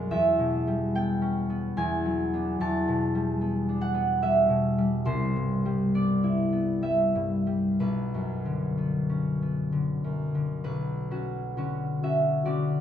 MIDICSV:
0, 0, Header, 1, 2, 480
1, 0, Start_track
1, 0, Key_signature, 2, "minor"
1, 0, Tempo, 824176
1, 66, Time_signature, 3, 2, 24, 8
1, 2945, Tempo, 886263
1, 3905, Tempo, 970874
1, 4865, Tempo, 930233
1, 6305, Tempo, 865801
1, 6995, End_track
2, 0, Start_track
2, 0, Title_t, "Harp"
2, 0, Program_c, 0, 46
2, 0, Note_on_c, 0, 35, 46
2, 0, Note_on_c, 0, 42, 39
2, 0, Note_on_c, 0, 56, 37
2, 0, Note_on_c, 0, 59, 37
2, 0, Note_on_c, 0, 62, 38
2, 0, Note_on_c, 0, 74, 54
2, 0, Note_on_c, 0, 78, 60
2, 63, Note_on_c, 0, 40, 49
2, 65, Note_on_c, 0, 76, 70
2, 82, Note_off_c, 0, 62, 0
2, 84, Note_off_c, 0, 56, 0
2, 85, Note_off_c, 0, 35, 0
2, 85, Note_off_c, 0, 78, 0
2, 86, Note_off_c, 0, 42, 0
2, 86, Note_off_c, 0, 74, 0
2, 226, Note_on_c, 0, 47, 36
2, 391, Note_on_c, 0, 55, 38
2, 548, Note_off_c, 0, 59, 0
2, 553, Note_on_c, 0, 59, 41
2, 556, Note_on_c, 0, 79, 69
2, 708, Note_on_c, 0, 61, 41
2, 864, Note_off_c, 0, 59, 0
2, 871, Note_on_c, 0, 59, 41
2, 1023, Note_off_c, 0, 40, 0
2, 1030, Note_on_c, 0, 40, 55
2, 1032, Note_on_c, 0, 80, 76
2, 1050, Note_off_c, 0, 76, 0
2, 1051, Note_off_c, 0, 47, 0
2, 1052, Note_off_c, 0, 61, 0
2, 1053, Note_off_c, 0, 55, 0
2, 1055, Note_off_c, 0, 79, 0
2, 1196, Note_on_c, 0, 54, 39
2, 1353, Note_off_c, 0, 59, 0
2, 1358, Note_on_c, 0, 59, 37
2, 1363, Note_on_c, 0, 62, 42
2, 1512, Note_off_c, 0, 40, 0
2, 1517, Note_on_c, 0, 40, 53
2, 1520, Note_on_c, 0, 81, 83
2, 1534, Note_off_c, 0, 54, 0
2, 1534, Note_off_c, 0, 80, 0
2, 1678, Note_on_c, 0, 47, 40
2, 1833, Note_on_c, 0, 55, 42
2, 1980, Note_off_c, 0, 59, 0
2, 1987, Note_on_c, 0, 59, 40
2, 2141, Note_off_c, 0, 62, 0
2, 2148, Note_on_c, 0, 62, 36
2, 2221, Note_on_c, 0, 78, 72
2, 2289, Note_off_c, 0, 59, 0
2, 2296, Note_on_c, 0, 59, 44
2, 2456, Note_off_c, 0, 55, 0
2, 2460, Note_on_c, 0, 76, 66
2, 2463, Note_on_c, 0, 55, 44
2, 2606, Note_off_c, 0, 47, 0
2, 2613, Note_on_c, 0, 47, 39
2, 2624, Note_off_c, 0, 78, 0
2, 2778, Note_off_c, 0, 55, 0
2, 2785, Note_on_c, 0, 55, 41
2, 2943, Note_on_c, 0, 36, 54
2, 2945, Note_on_c, 0, 72, 62
2, 2961, Note_off_c, 0, 47, 0
2, 2964, Note_off_c, 0, 62, 0
2, 2965, Note_off_c, 0, 40, 0
2, 2965, Note_off_c, 0, 81, 0
2, 3111, Note_on_c, 0, 43, 36
2, 3262, Note_off_c, 0, 55, 0
2, 3269, Note_on_c, 0, 55, 42
2, 3420, Note_off_c, 0, 59, 0
2, 3426, Note_on_c, 0, 59, 38
2, 3428, Note_on_c, 0, 74, 61
2, 3582, Note_on_c, 0, 64, 38
2, 3733, Note_off_c, 0, 59, 0
2, 3740, Note_on_c, 0, 59, 37
2, 3894, Note_off_c, 0, 55, 0
2, 3897, Note_off_c, 0, 76, 0
2, 3901, Note_on_c, 0, 55, 34
2, 3903, Note_on_c, 0, 76, 56
2, 4059, Note_off_c, 0, 43, 0
2, 4065, Note_on_c, 0, 43, 35
2, 4213, Note_off_c, 0, 55, 0
2, 4219, Note_on_c, 0, 55, 31
2, 4237, Note_off_c, 0, 74, 0
2, 4384, Note_on_c, 0, 35, 40
2, 4386, Note_on_c, 0, 71, 51
2, 4400, Note_off_c, 0, 36, 0
2, 4400, Note_off_c, 0, 72, 0
2, 4400, Note_off_c, 0, 76, 0
2, 4401, Note_off_c, 0, 55, 0
2, 4402, Note_off_c, 0, 64, 0
2, 4403, Note_off_c, 0, 43, 0
2, 4554, Note_on_c, 0, 42, 30
2, 4708, Note_on_c, 0, 50, 34
2, 4861, Note_off_c, 0, 59, 0
2, 4868, Note_on_c, 0, 59, 33
2, 5032, Note_on_c, 0, 61, 31
2, 5194, Note_off_c, 0, 59, 0
2, 5200, Note_on_c, 0, 59, 30
2, 5350, Note_off_c, 0, 50, 0
2, 5356, Note_on_c, 0, 50, 34
2, 5515, Note_off_c, 0, 42, 0
2, 5521, Note_on_c, 0, 42, 28
2, 5672, Note_off_c, 0, 50, 0
2, 5678, Note_on_c, 0, 50, 28
2, 5823, Note_off_c, 0, 71, 0
2, 5826, Note_off_c, 0, 35, 0
2, 5830, Note_on_c, 0, 71, 57
2, 5832, Note_on_c, 0, 35, 43
2, 5851, Note_off_c, 0, 50, 0
2, 5854, Note_off_c, 0, 42, 0
2, 6067, Note_off_c, 0, 61, 0
2, 6071, Note_on_c, 0, 61, 35
2, 6075, Note_on_c, 0, 66, 39
2, 6306, Note_off_c, 0, 61, 0
2, 6309, Note_off_c, 0, 66, 0
2, 6310, Note_on_c, 0, 50, 34
2, 6313, Note_on_c, 0, 61, 34
2, 6316, Note_on_c, 0, 66, 37
2, 6559, Note_off_c, 0, 61, 0
2, 6561, Note_off_c, 0, 66, 0
2, 6564, Note_on_c, 0, 61, 34
2, 6567, Note_on_c, 0, 76, 54
2, 6568, Note_on_c, 0, 66, 37
2, 6790, Note_off_c, 0, 50, 0
2, 6796, Note_off_c, 0, 66, 0
2, 6797, Note_on_c, 0, 50, 34
2, 6799, Note_off_c, 0, 61, 0
2, 6800, Note_on_c, 0, 74, 54
2, 6802, Note_on_c, 0, 66, 42
2, 6805, Note_on_c, 0, 61, 39
2, 6958, Note_off_c, 0, 76, 0
2, 6995, Note_off_c, 0, 35, 0
2, 6995, Note_off_c, 0, 50, 0
2, 6995, Note_off_c, 0, 59, 0
2, 6995, Note_off_c, 0, 61, 0
2, 6995, Note_off_c, 0, 66, 0
2, 6995, Note_off_c, 0, 71, 0
2, 6995, Note_off_c, 0, 74, 0
2, 6995, End_track
0, 0, End_of_file